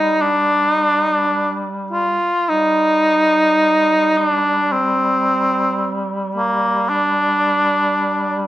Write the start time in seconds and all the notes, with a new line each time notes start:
Already playing: G3 D#4
0.21 D4
1.92 F4
2.48 G3 D#4
4.17 D4
4.72 C4
6.37 A#3
6.89 D4